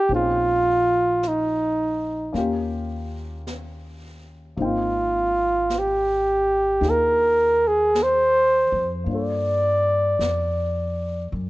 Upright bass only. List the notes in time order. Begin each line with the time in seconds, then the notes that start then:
0.09 A#1
2.34 D#2
4.57 G#1
6.81 D#2
8.72 F2
9.06 G2
10.19 F2
11.32 F#2